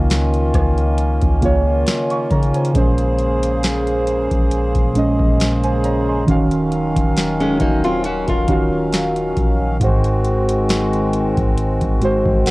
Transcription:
Already playing: C#2 C#3 D#3 A#3 C#4 F4 D#5
0.10 snare, closed hi-hat
0.34 closed hi-hat
0.54 C#2, kick, cross-stick, closed hi-hat
0.78 closed hi-hat
0.98 closed hi-hat
1.21 C#2, kick, closed hi-hat
1.40 C#3 A#3 F4, kick, closed hi-hat
1.45 C#5
1.87 snare, closed hi-hat
2.10 F5 C#6, closed hi-hat
2.31 C#3 C#5 A#5, kick, closed hi-hat, open hi-hat
2.43 closed hi-hat
2.54 C5 G#5, closed hi-hat
2.65 closed hi-hat
2.73 A#1 A#2 C#3 G#3 C#4 G#4 C5, kick, closed hi-hat
2.78 C5
2.98 closed hi-hat
3.19 closed hi-hat
3.43 closed hi-hat
3.63 snare, closed hi-hat
3.87 closed hi-hat
4.07 closed hi-hat
4.31 A#1, kick, closed hi-hat
4.51 closed hi-hat
4.75 A#1, kick, closed hi-hat
4.94 A#2 G#3 C#4, closed hi-hat
4.98 D#5
5.19 A#1, kick
5.40 snare, closed hi-hat
5.64 C5 G#5, closed hi-hat
5.84 C#5 A#5, closed hi-hat
6.09 D#5 C6
6.26 D#1 D#3 F#3 C#4 F#4 F5, kick, closed hi-hat
6.31 F5
6.51 closed hi-hat
6.72 closed hi-hat
6.96 D#1, kick, closed hi-hat
7.17 snare, closed hi-hat
7.40 G#3 C#4, closed hi-hat
7.60 D#1 A#3 D#4, kick, closed hi-hat
7.84 C4 F4, closed hi-hat
8.04 C#4 F#4, closed hi-hat
8.28 D#1 F4 A#4, kick, closed hi-hat
8.47 D#3 C#4 F#4, kick, closed hi-hat
8.52 F5
8.93 snare, closed hi-hat
9.16 closed hi-hat
9.37 A#1, kick, closed hi-hat
9.79 G#1 G#2 D#3 G#3 C4 F#4, kick, closed hi-hat
9.84 C5
10.04 closed hi-hat
10.25 closed hi-hat
10.49 closed hi-hat
10.69 snare, closed hi-hat
10.93 closed hi-hat
11.13 closed hi-hat
11.37 G#1, kick, closed hi-hat
11.58 closed hi-hat
11.81 G#1, kick, closed hi-hat
12.00 G#2 G#3 F#4, closed hi-hat
12.05 C5
12.26 G#1, kick
12.46 A#4 F#5, snare, closed hi-hat

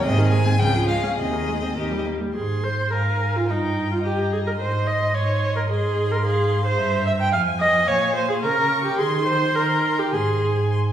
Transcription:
0.03 G#2 C3 G#4 D#5
0.18 D#3
0.30 G#3 G#5
0.46 C4
0.59 C#2 C#3 G5
0.74 F3
0.88 G#3 F5
1.03 C#4
1.18 D#2 C3 D#5
1.33 D#3
1.48 G#3
1.63 C4
1.77 D#2 D#3 G4
1.92 G3
2.07 A#3
2.21 G3
2.35 G#2 G#4 C6
2.64 C5
2.93 G#2 A#4 F5 G#5
3.36 F4
3.49 G2 D#4 G5 A#5
3.92 F4
4.04 G4 D#5
4.33 G#4
4.47 A#4
4.59 G#2 C5 C6
4.87 D#5
5.15 G#2 C#5
5.56 A#4
5.69 G#2 G#4 C6
6.12 A#4
6.24 G#4 F5
6.66 C5
6.79 G2 E5 A#5
7.07 E5
7.21 G5
7.33 F2 F5 G#5
7.60 D#5
7.87 A#2 C#5 F5
8.15 C5
8.30 G#4
8.43 C#3 A#4 A#5 C#6
8.85 G4
8.98 D#3 G#4 C6
9.27 C5
9.55 D#3 A#4 A#5
9.99 G4
10.13 G#2 G#4 G#5 C6
10.72 C6

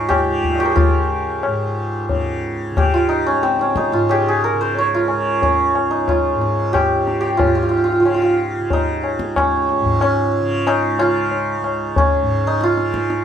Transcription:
Already playing: C#2 G#2 C#3 C#4 D#4 F4
0.09 G4, tabla na, tabla ge
0.24 C#3
0.44 tabla ge
0.51 D#5 F5
0.58 G4 C#5
0.63 A#4 C5
0.70 G4 G#4
0.76 F4, tabla tin, tabla ge
0.86 C#2
1.43 G#2, tabla na
2.08 C#3, tabla tin, tabla ge
2.71 C#3
2.77 G4, tabla na, tabla ge
2.94 F4
3.09 D#4
3.26 C#4
3.31 C#2
3.43 C4, tabla te
3.59 C#4, tabla te
3.76 D#4, tabla ke
3.92 G#2 F4, tabla te
4.09 G4 G#4, tabla na
4.28 G#4
4.44 A#4
4.54 C#3
4.61 C5
4.75 C#5, tabla tin
4.94 F4
5.08 tabla na
5.13 C#3
5.42 C#4, tabla tin, tabla ge
5.74 C#2, tabla na
5.91 D#4
6.08 F4, tabla na, tabla ge
6.34 G#2
6.41 tabla te
6.73 G4, tabla na, tabla ge
6.96 C#3
7.08 tabla te
7.21 G4
7.37 G#2 F4, tabla tin, tabla ge
7.47 F4
7.55 F4
7.63 F4
7.69 F4
7.77 F4
7.84 F4
7.92 F4
8.00 C#3 F4
8.06 F4, tabla na
8.14 F4
8.22 F4
8.60 C#3
8.70 D#4, tabla tin, tabla ge
9.04 tabla na
9.19 C#2, tabla ke
9.36 C#4, tabla na, tabla ge
9.69 tabla te
9.81 G#2
9.85 tabla ge
10.01 C#4, tabla na
10.41 C#3
10.67 D#4, tabla na
10.99 C#3 F4, tabla na
11.31 tabla tin
11.61 C#2, tabla na
11.96 C#4, tabla tin, tabla ge
12.22 G#2
12.47 D#4
12.61 F4, tabla te
12.77 C#3, tabla te
12.94 tabla ke
13.10 tabla te

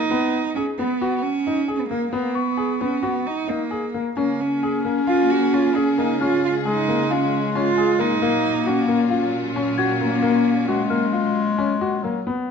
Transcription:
Already playing: D#4 F#6
0.11 B3
0.55 C#4 G#4
0.78 B3
1.01 F#4
1.23 C#4
1.47 D#4
1.68 G#4
1.75 C#4
1.79 B3
1.89 A#3
2.13 A#3 B3
2.35 B3 C#6
2.57 G#4
2.80 B3 C#4
3.03 B3 F#4
3.26 D#4
3.48 A#3 D#4
3.71 G#4
3.94 A#3
4.16 C#3 A#3 C#4 G#4
4.41 C#4
4.63 G#4
4.85 A#3
5.07 F4
5.30 F#4
5.53 C#4 F4
5.75 C#4 G#4
5.98 A#3 D#4
6.20 G#3 C#4 F4 F6
6.45 F4
6.65 G#3 D#4 G#4
6.88 A#3
7.11 C#4 F4
7.55 C#4 F4
7.78 G#4
7.99 A#3 D#4
8.21 A#2 F#3 A#3 F4
8.66 C#4 F#4
8.88 A#3
9.10 C#4 F4
9.56 C#4
9.78 F#4 G#6
10.01 A#3
10.22 A#3
10.68 G#3 F#4
10.90 A#3 F6
11.13 F4
11.58 C#4
11.81 F#4
12.03 F#3 A#3
12.27 B3

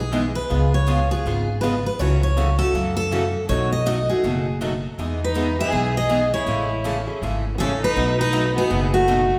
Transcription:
Already playing: B1
0.00 G#4
0.12 E3 G#3 B3 D#4 G#4
0.35 B4
0.49 C#2 C#3 G#3 B3 F4 G#4
0.74 C#5
0.87 C#3 G#3 B3 F4 G#4
1.11 B3 F4 G#4
1.25 G#1 C#3 G#3 B3 F4 G#4
1.61 C#3 G#3 B3 F4 G#4 B4
1.86 B4
1.99 C#2 C#3 E3 F#3 A3 C#4 E4 F#4 A4 C#5
2.23 C#5
2.36 C#3 E3 F#3 A3 C#4 E4 F#4 A4
2.59 A3 C#4 F#4 A4
2.73 F#2 C#3 E3 F#3 A3 C#4 E4 F#4 A4
2.97 A4
3.11 C#3 E3 F#3 A3 C#4 E4 F#4 A4
3.48 B1 B2 D#3 F#3 A3 B3 D#4 F#4 A4 C#5
3.72 D#5
3.86 B2 D#3 F#3 A3 B3 D#4 F#4 A4 D#5
4.09 A3 D#4 F#4 G#4
4.23 F#1 B2 D#3 F#3 A3 B3 D#4 F#4 A4
4.61 B2 D#3 F#3 A3 B3 D#4 F#4 A4
4.98 E2 E3 G#3 B3 D#4 G#4
5.23 D#4 B4
5.36 E3 G#3 B3 D#4 G#4
5.59 B3 D#4 G#4 E5
5.72 B1 E3 G#3 B3 D#4 G#4
5.97 G#4 D#5
6.09 E3 G#3 B3 D#4 G#4
6.34 E4 C#5
6.46 A1 C#3 E3 G#3 A3 C#4 E4 G#4 A4
6.84 C#3 E3 G#3 A3 C#4 E4 G#4 A4
7.07 A3 C#4 G#4
7.22 G#1 C#3 E3 G#3 A3 C#4 E4 G#4 A4
7.54 B3 G#4
7.59 A1 C#3 E3 G#3 A3 C#4 E4 G#4 A4
7.81 D#4 B4
7.96 B1 B2 F#3 A3 D#4 F#4 B4
8.18 D#4 B4
8.33 B2 F#3 A3 D#4 F#4 B4
8.55 A3 B3 D#4 F#4 G#4
8.70 F#1 B2 F#3 A3 D#4 F#4 B4
8.93 A3 F#4
9.08 B2 F#3 A3 D#4 F#4 B4

